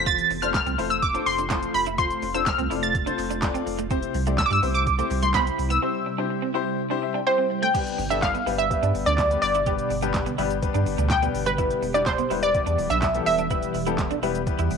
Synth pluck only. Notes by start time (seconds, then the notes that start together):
0.06 A6
0.42 F6
0.54 F6
0.90 E6
1.02 D6
1.26 C6
1.74 B5
1.98 C6
2.35 E6
2.46 F6
2.83 A6
4.38 E6
4.46 D6
4.53 E6
4.74 D6
5.23 C6
5.34 B5
5.70 E6
7.27 C5
7.63 G5
8.10 E5
8.22 F5
8.58 E5
9.06 D5
9.42 D5
11.11 G5
11.46 B4
11.94 D5
12.06 C5
12.43 D5
12.90 E5
13.26 E5